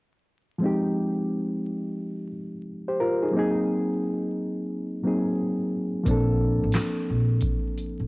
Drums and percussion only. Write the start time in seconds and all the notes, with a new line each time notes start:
6.06 kick, closed hi-hat
6.72 snare, clap, closed hi-hat
7.41 kick, closed hi-hat
7.78 closed hi-hat